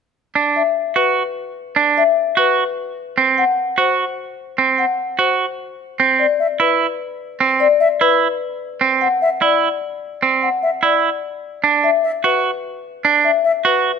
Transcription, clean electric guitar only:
0.35 0.62 D4 soft
0.96 1.22 F#4 soft
1.76 2.03 D4 medium
2.37 2.63 F#4 medium
3.18 3.44 C4 medium
3.78 4.04 F#4 soft
4.58 4.85 C4 soft
5.19 5.45 F#4 soft
6.00 6.26 C4 soft
6.60 6.86 E4 soft
7.40 7.67 C4 medium
8.01 8.27 E4 medium
8.81 9.07 C4 medium
9.42 9.68 E4 medium
10.23 10.48 C4 soft
10.83 11.09 E4 soft
11.64 11.89 D4 soft
12.24 12.50 F#4 soft
13.05 13.30 D4 medium
13.65 13.91 F#4 soft

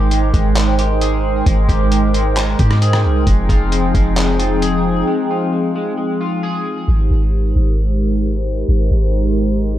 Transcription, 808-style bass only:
0.00 0.32 G#1 loud
0.34 1.42 G#1 loud
1.46 1.68 G#1 loud
1.69 2.56 G#1 loud
2.59 3.06 G#2 loud
3.04 3.26 C2 loud
3.27 3.49 F1 loud
3.49 3.93 F1 loud
3.95 5.03 F1 loud
6.88 7.09 G#1 loud
7.10 7.54 G#1 loud
7.56 8.64 G#1 loud
8.68 8.90 G#1 loud
8.91 9.77 G#1 loud

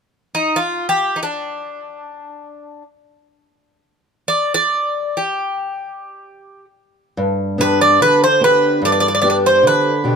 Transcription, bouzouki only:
0.35 0.57 D#4 medium
0.56 0.88 F4 medium
0.89 1.18 G4 medium
1.16 1.22 D#4 soft
1.23 2.82 D4 medium
4.28 4.53 D5 medium
4.54 5.17 D5 medium
5.17 6.65 G4 medium
7.61 7.79 B4 medium
7.81 8.02 D5 medium
8.02 8.23 B4 medium
8.24 8.44 C5 medium
8.44 8.81 B4 medium
8.85 8.91 D5 medium
8.92 8.98 D5 medium
9.00 9.06 D5 medium
9.08 9.13 D5 medium
9.15 9.20 D5 medium
9.22 9.28 D5 medium
9.30 9.36 D5 medium
9.46 9.65 C5 medium
9.67 10.16 B4 medium

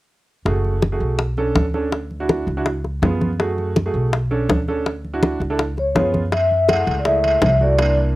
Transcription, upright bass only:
0.45 0.97 F#1 medium
1.00 1.52 B1 medium
1.55 2.41 D2 medium
2.47 2.98 C#2 medium
3.02 3.88 F#2 medium
3.94 4.45 B1 medium
4.49 5.35 D2 medium
5.40 5.92 C#2 medium
5.95 6.81 F#2 medium
6.87 7.38 C#2 medium
7.42 8.16 C2 medium

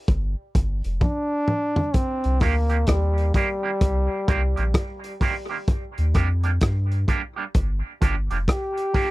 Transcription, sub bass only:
0.08 0.35 G1 loud
0.55 0.82 G1 medium
0.85 1.01 F1 loud
2.25 2.41 C2 loud
2.42 2.85 D2 medium
2.88 3.32 D#2 medium
3.82 4.08 C2 loud
4.29 4.55 C2 loud
4.58 4.74 A#1 medium
5.98 6.14 D#2 loud
6.15 6.59 F2 medium
6.62 7.06 G2 loud
7.55 7.82 G1 loud
8.02 8.29 G1 medium
8.31 8.48 F1 loud

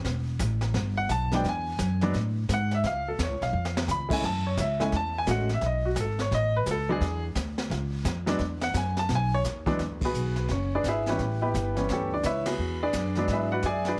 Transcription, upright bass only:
0.04 0.39 E1 medium
0.39 0.73 A1 loud
0.74 1.08 G1 medium
1.09 1.43 B1 medium
1.44 1.78 E2 medium
1.78 2.13 F#2 loud
2.13 2.47 A2 medium
2.49 2.82 G#2 medium
2.83 3.17 C#2 medium
3.19 3.29 E2 medium
3.29 3.41 C#2 medium
3.41 3.52 B1 medium
3.53 3.87 F2 medium
3.88 4.22 C#2 medium
4.23 4.56 F#2 medium
4.57 4.91 C#2 medium
4.92 5.26 E2 medium
5.27 5.61 A1 medium
5.61 5.95 B1 medium
5.96 6.30 G#1 medium
6.31 6.65 A1 medium
6.66 7.00 C#2 medium
7.00 7.34 E2 medium
7.35 7.69 D2 medium
7.70 8.04 C#2 medium
8.04 8.38 F2 medium
8.39 8.73 E2 medium
8.74 9.08 F#2 medium
9.09 9.43 B1 medium
9.44 9.78 D#2 medium
9.79 9.90 E2 medium
9.90 10.01 D2 soft
10.02 10.13 B1 medium
10.14 10.48 B1 medium
10.49 10.83 F#1 medium
10.83 11.17 G#1 medium
11.19 11.53 A1 medium
11.54 11.88 G1 medium
11.88 12.22 D2 medium
12.23 12.57 C#2 medium
12.58 12.92 E2 medium
12.93 13.27 F#2 medium
13.28 13.62 G#2 medium
13.63 13.97 F#2 medium

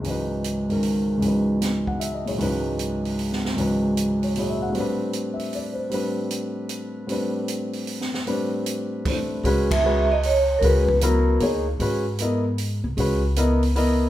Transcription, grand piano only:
0.00 1.16 C#2 soft
0.00 0.68 G#2 soft
0.00 1.20 E3 soft
0.06 1.22 F#3 soft
0.06 1.24 D#4 soft
0.11 1.25 B4 soft
0.69 1.18 G#2 soft
0.69 1.22 D#3 soft
0.69 1.23 C#4 soft
0.69 1.23 A#4 soft
1.17 2.36 C#2 soft
1.17 2.37 G#2 soft
1.22 2.38 E3 soft
1.22 2.24 F#3 soft
1.26 2.40 D#4 soft
1.26 2.41 B4 soft
1.88 2.07 F#5 soft
2.00 2.24 E5 soft
2.14 2.34 D#5 soft
2.25 2.39 A#2 soft
2.25 2.39 F#3 soft
2.25 2.39 G#3 soft
2.25 2.40 E4 soft
2.25 2.30 C#5 soft
2.38 3.54 C#2 soft
2.38 3.54 G#2 soft
2.38 3.55 E3 soft
2.38 3.56 F#3 soft
2.42 3.57 D#4 soft
2.42 3.58 B4 medium
3.55 4.73 C#2 soft
3.55 4.74 G#2 soft
3.55 4.74 E3 soft
3.55 4.35 F#3 soft
3.55 4.75 D#4 soft
3.60 4.76 B4 soft
4.24 4.38 C#5 soft
4.36 4.75 A#2 soft
4.36 4.75 F#3 soft
4.36 4.75 G#3 soft
4.36 4.76 E4 soft
4.36 4.76 C#5 soft
4.36 4.61 D#5 soft
4.50 4.69 E5 soft
4.62 4.82 F#5 soft
4.69 5.88 A2 soft
4.69 5.89 G3 soft
4.75 5.90 C4 soft
4.75 5.91 D4 soft
4.80 5.93 B4 medium
5.34 5.61 E5 soft
5.55 5.84 D5 soft
5.73 6.00 C5 soft
5.90 7.06 A2 soft
5.90 7.07 G3 soft
5.90 7.09 C4 soft
5.90 7.10 D4 soft
5.94 7.10 B4 medium
7.07 8.25 A2 soft
7.07 8.26 G3 soft
7.07 8.26 C4 soft
7.11 8.26 D4 soft
7.11 8.26 B4 soft
8.26 9.44 A2 soft
8.26 9.44 G3 soft
8.26 9.44 C4 soft
8.26 9.04 D4 soft
8.26 9.45 B4 medium
9.05 9.44 A3 soft
9.05 9.44 D4 soft
9.05 9.45 E4 soft
9.05 9.46 C5 soft
9.44 9.68 G#3 medium
9.44 9.68 C#4 medium
9.44 9.68 F#4 medium
9.44 9.69 B4 medium
9.84 10.07 G#3 medium
9.84 10.07 C#4 soft
9.84 10.07 F#4 soft
9.84 10.08 B4 medium
10.62 10.85 G#3 medium
10.62 10.86 C#4 medium
10.62 10.86 F#4 medium
10.62 10.86 B4 medium
11.02 11.39 F#3 medium
11.02 11.40 B3 medium
11.02 11.40 E4 medium
11.02 11.40 A#4 medium
11.41 11.64 A#3 medium
11.41 11.64 D#4 soft
11.41 11.65 G#4 soft
11.41 11.65 C#5 medium
11.80 12.03 G#3 medium
11.80 12.03 C#4 soft
11.80 12.03 F#4 soft
11.80 12.04 B4 medium
12.20 12.43 B3 medium
12.20 12.43 E4 medium
12.20 12.43 A#4 soft
12.20 12.43 D#5 medium
12.97 13.20 G#3 medium
12.97 13.21 C#4 soft
12.97 13.21 F#4 soft
12.97 13.22 B4 medium
13.37 13.60 B3 medium
13.37 13.60 E4 medium
13.37 13.60 A#4 medium
13.37 13.61 D#5 medium
13.76 14.09 B3 medium
13.76 14.09 E4 medium
13.76 14.09 A#4 medium
13.76 14.09 D#5 medium

